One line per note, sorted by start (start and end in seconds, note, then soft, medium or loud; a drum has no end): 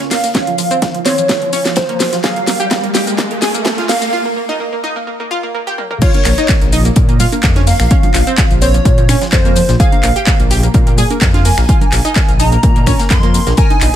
0.00 0.07 C#4 medium
0.00 snare soft
0.00 closed hi-hat soft
0.00 riser medium
0.11 0.19 A#3 medium
0.11 0.97 F5 loud
0.11 snare medium
0.11 open hi-hat loud
0.11 open hi-hat medium
0.11 shaker medium
0.23 0.31 A#3 medium
0.23 snare soft
0.23 closed hi-hat soft
0.23 shaker soft
0.35 0.43 C#4 loud
0.35 kick loud
0.35 snare medium
0.35 closed hi-hat medium
0.35 shaker soft
0.47 0.55 F3 medium
0.47 closed hi-hat soft
0.58 0.67 F3 medium
0.58 closed hi-hat medium
0.58 open hi-hat loud
0.58 shaker medium
0.71 0.78 C4 medium
0.71 closed hi-hat soft
0.71 shaker soft
0.82 0.90 F3 medium
0.82 kick loud
0.82 snare loud
0.82 closed hi-hat medium
0.82 shaker soft
0.94 1.02 F3 medium
0.94 closed hi-hat soft
1.06 1.14 C4 medium
1.06 1.68 C#5 medium
1.06 snare medium
1.06 closed hi-hat medium
1.06 open hi-hat loud
1.06 shaker medium
1.18 1.26 F3 medium
1.18 closed hi-hat soft
1.18 shaker soft
1.29 1.38 F3 medium
1.29 kick loud
1.29 snare medium
1.29 closed hi-hat medium
1.29 shaker soft
1.42 1.49 F3 medium
1.42 closed hi-hat soft
1.53 1.61 C#4 loud
1.53 closed hi-hat medium
1.53 open hi-hat loud
1.53 shaker medium
1.65 1.73 F3 medium
1.65 snare medium
1.65 closed hi-hat soft
1.65 shaker soft
1.76 1.85 F3 medium
1.76 2.19 C5 medium
1.76 kick loud
1.76 snare loud
1.76 closed hi-hat medium
1.76 shaker soft
1.89 1.96 A#3 medium
1.89 closed hi-hat soft
2.00 2.08 F3 medium
2.00 snare medium
2.00 closed hi-hat medium
2.00 open hi-hat loud
2.00 shaker medium
2.13 2.20 F3 medium
2.13 snare medium
2.13 closed hi-hat soft
2.13 shaker soft
2.24 2.32 G#4 medium
2.24 2.86 F5 loud
2.24 kick loud
2.24 snare medium
2.24 closed hi-hat medium
2.24 shaker soft
2.36 2.44 A#3 medium
2.36 closed hi-hat soft
2.47 2.56 A#3 medium
2.47 snare medium
2.47 closed hi-hat medium
2.47 open hi-hat loud
2.47 shaker medium
2.60 2.67 G4 loud
2.60 closed hi-hat soft
2.60 shaker soft
2.71 2.79 A#3 medium
2.71 kick loud
2.71 snare medium
2.71 snare loud
2.71 closed hi-hat medium
2.71 closed hi-hat loud
2.71 shaker soft
2.83 2.91 A#3 medium
2.83 closed hi-hat soft
2.95 3.03 G4 loud
2.95 snare medium
2.95 closed hi-hat medium
2.95 open hi-hat loud
2.95 shaker medium
3.07 3.14 A#3 medium
3.07 closed hi-hat soft
3.07 shaker soft
3.18 3.26 A#3 medium
3.18 kick loud
3.18 snare medium
3.18 closed hi-hat medium
3.18 shaker soft
3.31 3.38 A#3 medium
3.31 closed hi-hat soft
3.42 3.50 G#4 loud
3.42 snare medium
3.42 closed hi-hat medium
3.42 open hi-hat loud
3.42 shaker medium
3.54 3.62 A#3 medium
3.54 closed hi-hat soft
3.54 shaker soft
3.65 3.74 A#3 medium
3.65 kick loud
3.65 snare loud
3.65 snare medium
3.65 closed hi-hat medium
3.65 shaker soft
3.78 3.85 F4 loud
3.78 snare soft
3.78 closed hi-hat soft
3.89 3.97 A#3 medium
3.89 4.13 F5 loud
3.89 snare medium
3.89 open hi-hat loud
3.89 open hi-hat medium
3.89 shaker medium
4.02 4.09 A#3 medium
4.02 snare soft
4.02 closed hi-hat soft
4.02 shaker soft
4.13 4.21 F4 medium
4.25 4.33 A#3 medium
4.36 4.45 A#3 medium
4.49 4.56 D#4 medium
4.60 4.68 A#3 medium
4.73 4.80 A#3 medium
4.84 4.92 D#4 medium
4.96 5.03 A#3 medium
5.07 5.15 A#3 medium
5.20 5.27 A#3 medium
5.31 5.39 F4 medium
5.43 5.51 A#3 medium
5.55 5.63 A#3 medium
5.67 5.74 G4 medium
5.78 5.86 A#3 medium
5.78 high tom medium
5.91 5.98 A#3 medium
5.91 mid tom medium
6.02 6.10 F4 loud
6.02 6.64 C#5 loud
6.02 kick loud
6.02 closed hi-hat loud
6.02 closed hi-hat medium
6.02 crash loud
6.02 shaker soft
6.14 6.22 A#3 medium
6.14 closed hi-hat soft
6.14 high conga medium
6.14 shaker soft
6.25 6.33 A#1 medium
6.25 6.34 A#3 medium
6.25 finger snap medium
6.25 clap medium
6.25 closed hi-hat medium
6.25 open hi-hat loud
6.25 shaker medium
6.38 6.45 D#4 medium
6.38 closed hi-hat soft
6.38 shaker soft
6.49 6.57 A#3 medium
6.49 kick loud
6.49 snare loud
6.49 clap loud
6.49 closed hi-hat loud
6.49 closed hi-hat medium
6.49 shaker soft
6.61 6.90 A#1 medium
6.61 6.69 A#3 medium
6.61 closed hi-hat soft
6.61 shaker soft
6.73 6.81 D#4 medium
6.73 closed hi-hat medium
6.73 open hi-hat loud
6.73 shaker medium
6.85 6.92 A#3 medium
6.85 closed hi-hat soft
6.85 shaker soft
6.96 7.25 A#2 medium
6.96 7.04 A#3 medium
6.96 kick loud
6.96 closed hi-hat loud
6.96 shaker soft
7.09 7.16 A#3 medium
7.09 closed hi-hat soft
7.09 shaker soft
7.20 7.28 F4 medium
7.20 closed hi-hat medium
7.20 open hi-hat loud
7.20 low conga medium
7.20 shaker medium
7.32 7.40 A#3 medium
7.32 closed hi-hat soft
7.32 high conga medium
7.32 shaker soft
7.43 7.72 F2 medium
7.43 7.52 A#3 medium
7.43 kick loud
7.43 snare loud
7.43 clap loud
7.43 closed hi-hat loud
7.43 closed hi-hat medium
7.43 shaker soft
7.56 7.63 C#4 medium
7.56 snare soft
7.56 closed hi-hat soft
7.56 high conga medium
7.56 shaker soft
7.67 7.75 A#3 medium
7.67 8.53 F5 loud
7.67 open hi-hat medium
7.67 open hi-hat loud
7.67 shaker medium
7.80 7.87 A#1 medium
7.80 7.87 A#3 medium
7.80 finger snap medium
7.80 snare soft
7.80 closed hi-hat soft
7.80 shaker soft
7.91 7.99 C#4 loud
7.91 kick loud
7.91 closed hi-hat medium
7.91 shaker soft
8.03 8.11 F3 medium
8.03 closed hi-hat soft
8.03 high conga medium
8.03 low conga medium
8.03 shaker soft
8.14 8.22 A#1 medium
8.14 8.23 F3 medium
8.14 finger snap medium
8.14 clap medium
8.14 closed hi-hat medium
8.14 open hi-hat loud
8.14 shaker medium
8.27 8.34 C4 medium
8.27 closed hi-hat soft
8.27 shaker soft
8.38 8.46 F3 medium
8.38 kick loud
8.38 snare loud
8.38 clap loud
8.38 closed hi-hat medium
8.38 closed hi-hat loud
8.38 shaker soft
8.51 8.79 A#1 loud
8.51 8.58 F3 medium
8.51 closed hi-hat soft
8.51 shaker soft
8.62 8.70 C4 medium
8.62 9.24 C#5 loud
8.62 closed hi-hat medium
8.62 open hi-hat loud
8.62 shaker medium
8.74 8.82 F3 medium
8.74 closed hi-hat soft
8.74 shaker soft
8.85 9.14 A#2 medium
8.85 8.94 F3 medium
8.85 kick loud
8.85 closed hi-hat medium
8.85 shaker soft
8.98 9.05 F3 medium
8.98 closed hi-hat soft
8.98 shaker soft
9.09 9.17 C#4 medium
9.09 finger snap medium
9.09 closed hi-hat medium
9.09 open hi-hat loud
9.09 high conga loud
9.09 shaker medium
9.22 9.29 F3 medium
9.22 snare medium
9.22 closed hi-hat soft
9.22 shaker soft
9.32 9.61 F2 medium
9.32 9.41 F3 medium
9.32 9.75 C5 loud
9.32 kick loud
9.32 snare loud
9.32 clap loud
9.32 closed hi-hat medium
9.32 shaker soft
9.45 9.52 A#3 medium
9.45 closed hi-hat soft
9.45 shaker soft
9.56 9.64 F3 medium
9.56 closed hi-hat medium
9.56 open hi-hat loud
9.56 shaker medium
9.69 9.76 A#1 medium
9.69 9.76 F3 medium
9.69 snare medium
9.69 closed hi-hat soft
9.69 shaker soft
9.80 9.88 G#4 loud
9.80 10.42 F5 loud
9.80 kick loud
9.80 closed hi-hat medium
9.80 shaker soft
9.92 10.00 A#3 medium
9.92 closed hi-hat soft
9.92 high conga medium
9.92 shaker soft
10.03 10.11 A#1 loud
10.03 10.12 A#3 medium
10.03 finger snap medium
10.03 clap medium
10.03 closed hi-hat medium
10.03 open hi-hat loud
10.03 shaker medium
10.16 10.23 G4 medium
10.16 closed hi-hat soft
10.16 shaker soft
10.27 10.35 A#3 medium
10.27 kick loud
10.27 snare loud
10.27 clap loud
10.27 closed hi-hat loud
10.27 closed hi-hat medium
10.27 shaker soft
10.40 10.68 A#1 loud
10.40 10.47 A#3 medium
10.40 closed hi-hat soft
10.40 shaker soft
10.51 10.59 G4 medium
10.51 closed hi-hat medium
10.51 open hi-hat loud
10.51 shaker medium
10.63 10.70 A#3 medium
10.63 closed hi-hat soft
10.63 shaker soft
10.74 11.03 A#2 medium
10.74 10.83 A#3 medium
10.74 kick loud
10.74 closed hi-hat medium
10.74 shaker soft
10.87 10.94 A#3 medium
10.87 closed hi-hat soft
10.87 shaker soft
10.98 11.06 G#4 loud
10.98 closed hi-hat medium
10.98 open hi-hat loud
10.98 low conga medium
10.98 shaker medium
11.10 11.18 A#3 medium
11.10 closed hi-hat soft
11.10 high conga medium
11.10 shaker soft
11.21 11.50 F2 medium
11.21 11.30 A#3 medium
11.21 kick loud
11.21 snare loud
11.21 clap loud
11.21 closed hi-hat medium
11.21 shaker soft
11.34 11.41 F4 medium
11.34 snare soft
11.34 closed hi-hat soft
11.34 high conga medium
11.34 shaker soft
11.45 11.53 A#3 medium
11.45 12.41 G#5 loud
11.45 open hi-hat loud
11.45 open hi-hat medium
11.45 shaker medium
11.58 11.65 A#1 medium
11.58 11.65 A#3 medium
11.58 finger snap medium
11.58 snare soft
11.58 closed hi-hat soft
11.58 shaker soft
11.69 11.77 F4 loud
11.69 kick loud
11.69 closed hi-hat medium
11.69 shaker soft
11.81 11.89 A#3 medium
11.81 closed hi-hat soft
11.81 high conga medium
11.81 low conga medium
11.81 shaker soft
11.92 12.00 A#1 loud
11.92 12.01 A#3 medium
11.92 finger snap medium
11.92 clap medium
11.92 closed hi-hat medium
11.92 open hi-hat loud
11.92 shaker medium
12.05 12.12 D#4 loud
12.05 closed hi-hat soft
12.05 shaker soft
12.16 12.24 A#3 medium
12.16 kick loud
12.16 snare loud
12.16 clap loud
12.16 closed hi-hat medium
12.16 shaker soft
12.29 12.56 A#1 medium
12.29 12.36 A#3 medium
12.29 closed hi-hat soft
12.29 shaker soft
12.40 12.48 D#4 loud
12.40 13.12 A#5 loud
12.40 closed hi-hat medium
12.40 open hi-hat loud
12.40 high conga medium
12.40 shaker medium
12.52 12.59 A#3 medium
12.52 closed hi-hat soft
12.52 shaker soft
12.63 12.92 A#2 medium
12.63 12.71 A#3 medium
12.63 kick loud
12.63 closed hi-hat medium
12.63 shaker soft
12.76 12.83 A#3 medium
12.76 closed hi-hat soft
12.76 shaker soft
12.86 12.95 C#4 loud
12.86 finger snap medium
12.86 kick medium
12.86 closed hi-hat medium
12.86 open hi-hat loud
12.86 high conga medium
12.86 shaker medium
12.99 13.07 A#3 medium
12.99 snare medium
12.99 closed hi-hat soft
12.99 shaker soft
13.10 13.39 F2 medium
13.10 13.19 A#3 medium
13.10 13.53 C6 medium
13.10 kick loud
13.10 snare loud
13.10 clap loud
13.10 closed hi-hat medium
13.10 shaker soft
13.23 13.30 A#3 medium
13.23 closed hi-hat soft
13.23 shaker soft
13.34 13.42 A#3 medium
13.34 closed hi-hat medium
13.34 open hi-hat loud
13.34 shaker medium
13.47 13.53 A#1 medium
13.47 13.54 A#3 medium
13.47 snare medium
13.47 closed hi-hat soft
13.47 shaker soft
13.57 13.66 A#4 loud
13.57 13.96 G#5 loud
13.57 kick loud
13.57 closed hi-hat medium
13.57 ride medium
13.57 shaker soft
13.70 13.78 D#4 medium
13.70 closed hi-hat soft
13.70 high conga medium
13.70 shaker soft
13.81 13.89 A#1 loud
13.81 13.90 D#4 medium
13.81 finger snap medium
13.81 clap medium
13.81 closed hi-hat medium
13.81 open hi-hat loud
13.81 shaker medium